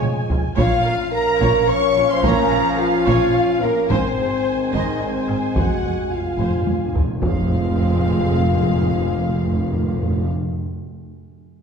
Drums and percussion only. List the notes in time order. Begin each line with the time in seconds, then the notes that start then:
0.02 taiko mid
0.30 taiko low
0.58 taiko
1.41 taiko
2.24 taiko
2.52 taiko rim
3.07 taiko
3.90 taiko
4.73 taiko
5.28 taiko rim
5.56 taiko
6.39 taiko low-mid
6.67 taiko high
6.95 taiko low
7.22 taiko